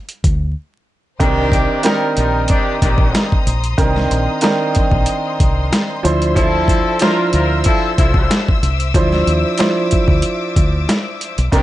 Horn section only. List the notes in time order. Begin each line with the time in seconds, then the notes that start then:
1.21 D#3 D4 G4
1.85 G3 D#4 A#4
2.17 G3 D#4 A#4
2.49 D#3 D4 G4
2.82 D#3 D4 G4
6.35 F3 E4 A4
7.01 F4 A#4
7.33 F4 A#4
7.65 F3 E4 A4
7.97 F3 E4 A4
11.53 D#3 D4 G4